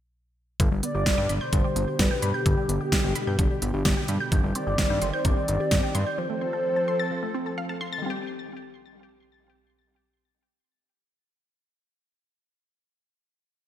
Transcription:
0.60 G1 B2 D3 G4, kick, closed hi-hat
0.71 G1 G3
0.83 B3 D5, closed hi-hat
0.95 G1 G4
1.06 G1, kick, snare, closed hi-hat
1.18 G2 G5
1.29 G1 B5, closed hi-hat
1.41 C5 G6
1.53 G1 D3, kick, closed hi-hat
1.64 G3
1.76 G1 B3, closed hi-hat
1.88 G4
1.99 G1 B4 D5, kick, snare, closed hi-hat
2.11 G5
2.22 G2 B5, closed hi-hat
2.34 G4 G6
2.46 G1 D3 G4, kick, closed hi-hat
2.57 G3
2.69 G1 B3, closed hi-hat
2.81 G4
2.92 kick, snare, closed hi-hat
3.04 G1 G5
3.15 B5, closed hi-hat
3.27 G2 G6
3.39 G1 D3, kick, closed hi-hat
3.51 G3
3.62 G1 B3, closed hi-hat
3.74 G1 G4
3.85 G1 D5, kick, snare, closed hi-hat
3.97 G5
4.08 G2 B5, closed hi-hat
4.20 G6
4.32 G1 D#3 C4, kick, closed hi-hat
4.43 G1 G3
4.55 C4 D5, closed hi-hat
4.67 G1 G4
4.78 G1, kick, snare, closed hi-hat
4.90 G2 G5
5.02 G1 C6, closed hi-hat
5.14 C5 G6
5.25 G1 D#3 D5, kick, closed hi-hat
5.37 G3
5.48 G1 C4, closed hi-hat
5.60 G4
5.71 G1 D#5, kick, snare, closed hi-hat
5.83 G5
5.95 G2 C6, closed hi-hat
6.07 G6
6.18 F3 C4 A4 C5
6.30 A3
6.41 C4
6.53 A4
6.76 A5
6.88 C6
7.00 A6
7.11 F3
7.23 A3
7.34 C4
7.46 A4
7.58 F5
7.69 A5
7.81 C6
7.93 A6
7.98 D#3 G3
8.06 C4 G4

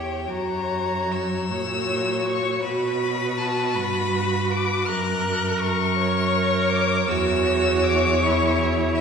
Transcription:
Already playing: E2 G4 C#5 G5
0.27 F#2 F#4 C#5 A#5
1.12 E6
1.51 A#2 F#4 C#5
2.26 C#6
2.62 B2 F#4 B4 B5
3.37 A5
3.75 G2 B5
4.51 D6
4.86 F#2 A#4 F#6
5.60 C#6
5.97 A#4 C#5
6.70 D6
7.08 E2 F#4 C#5 E6
7.84 D6
8.22 E4 C#6
8.95 E5

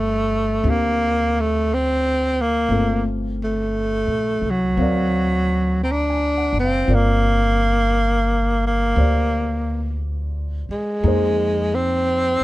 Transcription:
Already playing: G1 G3 A3 C4 F4 A4
0.64 D2 C4 D4 G4
0.70 A#3
1.40 A3
1.74 C4
2.41 A#3
2.69 G1 A3 C4 F4 A4
3.44 A3
4.07 A#1
4.42 C2
4.50 F#3
4.77 D2 C4 A#4 F5
4.82 D5
5.83 C4 A#5
5.92 D4
6.10 G#5
6.37 F#5
6.53 F#1
6.59 C4
6.64 F5
6.85 G1 C4 F4
6.89 A#4 D5
6.94 A#3
8.67 A#3
8.96 D2 G4 C5 D5
10.69 G#3, muted upright bass stroke
11.03 F2 A#3 D#4 G#4
11.08 C5
11.74 C4

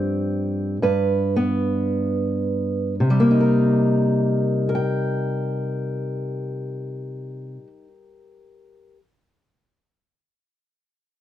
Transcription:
Already playing: G2 F3 C4 G4
0.82 G2 B4
1.36 B3
3.00 C3
3.10 G3
3.20 A#3
3.31 D#4
3.41 A#4
4.69 A#4
4.75 G5

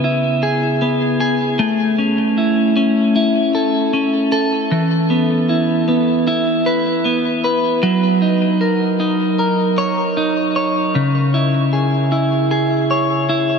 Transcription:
Already playing: C#3 B3 G#4
0.04 E4
0.43 G#4
0.82 B3
1.20 G#4
1.59 A3
1.98 C#4
2.38 E4
2.77 C#4
3.16 E4
3.55 A4
3.93 C#4
4.32 A4
4.71 E3
5.10 B3
5.49 E4
5.88 B3
6.27 E4
6.66 B4
7.05 B3
7.44 B4
7.83 F#3
8.22 D#4
8.61 A#4
9.00 D#4
9.39 A#4
9.78 C#5
10.17 D#4
10.56 C#5
10.95 C#3
11.34 E4
11.73 G#4
12.12 E4
12.51 G#4
12.91 C#5
13.29 E4

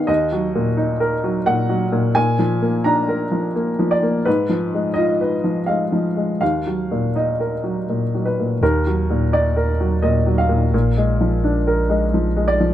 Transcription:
Already playing: D#3 B3 D#4 G#4 F5
0.07 D#2 D#5
0.32 F#3
0.55 A#2
0.77 D#4
1.00 A#4
1.24 F#3
1.46 A#2 F#5
1.69 F#3
1.92 A#2
2.15 A#2 G#5
2.39 F3
2.62 A#3
2.84 D4 A#5
3.08 A#4
3.32 F3
3.55 A#3
3.79 F3
3.91 D5
4.03 A#3
4.25 G#2 B4
4.49 F3
4.74 G#3
4.94 F4 D#5
5.21 B4
5.44 F3
5.66 G#3 F5
5.92 F3
6.16 G#3
6.41 D#2 F5
6.67 F#3
6.91 A#2
7.15 D#4 D#5
7.40 A#4
7.63 F#3
7.89 A#2
8.14 F#3
8.25 B4
8.40 A#2
8.62 D#2 A#4
8.87 F#3
9.10 A#2
9.33 D#4 D5
9.57 A#4
9.80 F#3
10.02 A#2 D#5
10.26 F#3
10.38 F5
10.49 A#2
10.73 A#1 A#2
10.97 G#3
11.21 F3
11.44 D4
11.67 A#4
11.89 G#3
12.14 F3
12.36 G#3
12.48 D5
12.60 F3

